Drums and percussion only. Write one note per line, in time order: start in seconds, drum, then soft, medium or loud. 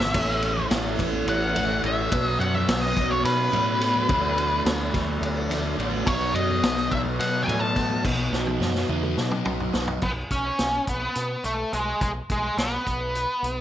0.00 snare loud
0.00 low conga medium
0.14 kick loud
0.14 crash loud
0.14 high conga loud
0.42 ride medium
0.57 low conga medium
0.71 snare loud
0.71 ride loud
0.99 kick medium
0.99 ride medium
0.99 low conga loud
1.13 high conga medium
1.28 ride loud
1.55 ride medium
1.55 low conga loud
1.84 ride medium
2.12 kick loud
2.12 ride loud
2.12 high conga loud
2.26 low conga soft
2.41 ride medium
2.54 low conga medium
2.68 snare loud
2.68 ride loud
2.97 kick medium
2.97 snare soft
2.97 ride medium
2.97 low conga loud
3.11 high conga medium
3.25 snare soft
3.25 ride medium
3.53 ride medium
3.53 low conga medium
3.81 snare soft
3.81 ride medium
3.95 low conga medium
4.09 kick loud
4.09 ride loud
4.09 high conga medium
4.38 ride medium
4.66 snare loud
4.66 ride loud
4.93 kick medium
4.93 snare soft
4.93 ride medium
4.93 low conga medium
5.08 high conga medium
5.23 ride loud
5.50 snare soft
5.50 ride medium
5.50 low conga loud
5.80 ride medium
5.92 low conga medium
6.06 kick loud
6.06 ride loud
6.06 high conga loud
6.21 low conga soft
6.35 ride medium
6.49 low conga medium
6.63 snare loud
6.63 ride loud
6.78 low conga soft
6.91 kick medium
6.91 ride medium
6.91 low conga medium
7.05 high conga medium
7.05 low conga soft
7.20 snare soft
7.20 ride loud
7.48 ride medium
7.48 low conga loud
7.62 low conga soft
7.76 kick medium
7.76 snare soft
7.76 ride medium
7.90 low conga medium
8.05 kick loud
8.05 crash loud
8.05 high conga medium
8.05 low conga loud
8.33 snare medium
8.47 high tom medium
8.61 snare medium
8.61 low conga medium
8.75 snare medium
8.75 low conga soft
8.89 mid tom medium
9.03 mid tom medium
9.03 high conga medium
9.03 low conga medium
9.17 snare medium
9.31 mid tom medium
9.45 mid tom medium
9.60 floor tom medium
9.60 low conga medium
9.74 snare medium
9.88 floor tom medium
10.02 kick medium
10.02 crash medium
10.31 kick medium
10.31 closed hi-hat medium
10.59 snare medium
10.59 closed hi-hat medium
10.87 kick medium
10.87 closed hi-hat medium
11.15 closed hi-hat medium
11.44 closed hi-hat medium
11.73 closed hi-hat soft
12.01 kick medium
12.01 closed hi-hat medium
12.30 kick medium
12.30 closed hi-hat medium
12.58 snare medium
12.58 closed hi-hat medium
12.87 kick medium
12.87 closed hi-hat medium
13.15 closed hi-hat medium
13.44 closed hi-hat medium